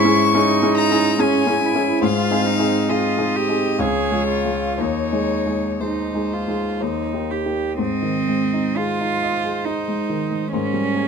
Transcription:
Already playing: grand piano G#2 C#4 E4 G#4, cello E4, violin C#6
0.04 grand piano C#4 E4 G#4
0.34 grand piano C#4 E4 G#4, cello D#4
0.62 grand piano C#4 E4 G#4
0.78 violin A#5
0.91 grand piano C#4 E4 G#4
1.19 grand piano C#4 E4 G#4, cello C#4, violin G#5
1.47 grand piano C#4 E4 G#4
1.63 cello E4
1.75 grand piano C#4 E4 G#4
2.01 grand piano G#2, cello F4, violin F5
2.31 grand piano C4 D#4 G#4
2.46 cello D#4
2.59 grand piano C4 D#4 G#4
2.89 grand piano C4 D#4 G#4, cello F4, violin D#5
3.18 grand piano C4 D#4 G#4
3.36 cello G4
3.48 grand piano C4 D#4 G#4
3.79 grand piano C#2, cello G#4, violin C#5
4.11 grand piano G#3 F4 G#4
4.28 cello F4
4.45 grand piano G#3 F4 G#4
4.78 grand piano D#2, cello D#4, violin C#5
5.12 grand piano G#3 D#4 G#4
5.46 grand piano G#3 D#4 G#4
5.80 grand piano G#3 D#4 G#4, cello D#4, violin C5
6.14 grand piano G#3 D#4 G#4
6.33 cello F4
6.48 grand piano G#3 D#4 G#4
6.81 grand piano D#2, cello D#4
7.13 grand piano A#3 D#4 G4
7.31 cello G4
7.45 grand piano A#3 D#4 G4
7.78 grand piano G#2, cello C4, violin D#5
8.02 grand piano D#3
8.28 grand piano G#3
8.53 grand piano D#4
8.76 cello F4, grand piano G#4, violin C5
9.00 grand piano D#4
9.23 grand piano D#5
9.44 grand piano G#4
9.65 cello D#4, grand piano D#4
9.88 grand piano G#3
10.09 grand piano D#3
10.31 grand piano G#3
10.52 grand piano G#2, cello C#4, violin A#4
10.73 grand piano G3
10.95 grand piano A#3, violin G#4

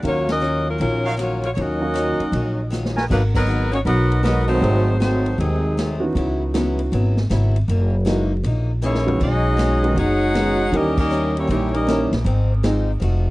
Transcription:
0.02 upright bass D#2, steel-string acoustic guitar D#3 F#3 C#4 F4, grand piano F#3 C#4 D#4 A#4 F5, ride
0.07 saxophone section A#3 F4 F#4 C#5
0.29 saxophone section C#4 F#4 A#4 D#5, snare, ride
0.40 steel-string acoustic guitar D#3 F#3 C#4 F4, hi-hat pedal
0.69 saxophone section F#3 C#4 F4 A#4
0.78 upright bass A#1, steel-string acoustic guitar D#3 F#3 C#4 F4, saxophone section F#3 C#4 F4 A#4, ride
1.05 trumpet section D#4 F#4 C#5 F5
1.17 steel-string acoustic guitar D#3 F#3 C#4 F4, cross-stick, hi-hat pedal, ride
1.21 saxophone section A#3 F4 F#4 C#5
1.43 saxophone section A#3 F4 F#4 C#5, ride
1.53 upright bass D#2, steel-string acoustic guitar D#3 F#3 C#4, trombone section A#3, saxophone section C#5, ride
1.58 trombone section F#3 D#4, saxophone section C#4 F#4 A#4 D#5, steel-string acoustic guitar F4
1.81 grand piano F#3 C#4 D#4 A#4 F5
1.94 steel-string acoustic guitar D#3 F#3 C#4 F4, hi-hat pedal, ride
2.19 muted upright bass stroke, ride
2.32 upright bass A#1, steel-string acoustic guitar D#3 F#3 C#4 F4, ride
2.70 steel-string acoustic guitar D#3 F#3 C#4 F4, snare, hi-hat pedal
2.85 snare
2.97 trumpet section F#4 A#4 B4 G#5, snare
3.08 upright bass G#1, trombone section D#3 F#3 B3, saxophone section F#3 A#3 D#4 B4, steel-string acoustic guitar G#3 B3 F#4 A#4, kick, crash
3.34 trombone section D#3 F#3 B3, saxophone section F#3 D#4 A#4 B4, kick, crash
3.47 steel-string acoustic guitar G#3 B3 F#4 A#4, hi-hat pedal
3.72 saxophone section A#3 D#4 F#4 C#5, trombone section C#4, ride
3.85 upright bass B1, trombone section F#3 B3 D#4, steel-string acoustic guitar G#3 B3 F#4 A#4, saxophone section B3 F#4 A#4 D#5, ride
4.12 ride
4.23 trombone section F#3 B3 D#4, steel-string acoustic guitar G#3 B3 F#4 A#4, grand piano G#3 B3 D#4 F#4 A#4, saxophone section B3 F#4 A#4 D#5, snare, hi-hat pedal, ride
4.48 trombone section D#3 F#3 C4, saxophone section A3 D#4 F#4 C5
4.61 upright bass G#1, steel-string acoustic guitar G#2 F#3 A3 C4, grand piano F#3 A3 C4 D#4 G#4, ride
5.00 steel-string acoustic guitar G#2 F#3 A3 C4, trombone section D#3 F#3 C4, saxophone section A3 D#4 F#4 C5, snare, hi-hat pedal, ride
5.26 ride
5.38 upright bass D#2, steel-string acoustic guitar G#2 F#3 A3 C4, trombone section C3 D#3 G#3, saxophone section F#3 C4 D#4 G#4, ride
5.77 steel-string acoustic guitar G#2 F#3 A3 C4, snare, hi-hat pedal, ride
6.00 grand piano E3 B3 C#4 D#4 F#4
6.15 upright bass C#2, steel-string acoustic guitar C#3 F#3 B3 E4, ride
6.54 steel-string acoustic guitar C#3 F#3 B3 E4, grand piano E3 B3 C#4 D#4 F#4, snare, hi-hat pedal, ride
6.79 ride
6.92 upright bass G#1, steel-string acoustic guitar C#3 F#3 B3 E4, ride
7.17 snare
7.30 upright bass G#1, steel-string acoustic guitar C#3 F#3 B3 E4, snare, hi-hat pedal, ride
7.56 ride
7.68 upright bass F#1, steel-string acoustic guitar F#2 E3 A#3 D#4, ride
8.05 steel-string acoustic guitar F#2 E3 A#3 D#4, grand piano E3 G#3 A#3 D#4 F#4, snare, hi-hat pedal, ride
8.43 upright bass A#1, steel-string acoustic guitar F#2 E3 A#3 D#4, ride
8.82 steel-string acoustic guitar F#2 E3 A#3 D#4, trombone section E3 A#3 C#4, saxophone section A#3 E4 G#4 C#5, hi-hat pedal
8.95 snare
9.06 grand piano D#3 G#3 B3 C#4 F#4, floor tom
9.20 upright bass B1, steel-string acoustic guitar B2 G#3 C#4 D#4, trombone section F#3 G#3 D#4, saxophone section C#4 F#4 G#4 D#5, kick, crash
9.57 steel-string acoustic guitar B2 G#3 C#4 D#4, snare, hi-hat pedal, ride
9.83 grand piano D#3 G#3 B3 C#4 F#4, ride
9.95 upright bass F#1, steel-string acoustic guitar B2 G#3 C#4 D#4, trombone section G#3 D#4 F#4, saxophone section G#4 F#5, ride
10.00 saxophone section D#4 C#5
10.34 steel-string acoustic guitar B2 G#3 C#4 D#4, grand piano D#3 G#3 B3 C#4 F#4, snare, hi-hat pedal, ride
10.72 upright bass D#2, steel-string acoustic guitar D#3 G3 C#4 E4, grand piano E3 A#3 C#4 D#4 G4, trombone section G3 A#3 D#4, saxophone section A#4 D#5, ride
10.76 saxophone section C#4 G4
10.97 trombone section G3 A#3 D#4, saxophone section C#4 G4 A#4 D#5, kick, crash
11.10 steel-string acoustic guitar D#3 G3 C#4 E4, hi-hat pedal
11.37 trombone section G3 A#3 C#4, saxophone section A#3 E4 G4 C#5, ride
11.47 upright bass A#1, steel-string acoustic guitar D#3 G3 C#4 E4, grand piano E3 A#3 C#4 D#4, trombone section G3 A#3 C#4, saxophone section A#3 E4 G4 C#5, ride
11.52 grand piano G4
11.74 trombone section G3 A#3 D#4, saxophone section C#4 G4 A#4 D#5, ride
11.87 steel-string acoustic guitar D#3 G3 C#4 E4, grand piano E3 A#3 C#4 D#4 A#4, snare, hi-hat pedal, ride
12.12 upright bass A#1, snare, ride
12.24 upright bass G#1, steel-string acoustic guitar G#2 F3 C4 D#4, ride
12.63 steel-string acoustic guitar G#2 F3 C4 D#4, grand piano F3 G#3 C4 D#4 G#4, snare, hi-hat pedal, ride
13.00 upright bass F1, steel-string acoustic guitar F3 A3 D#4 F#4, ride

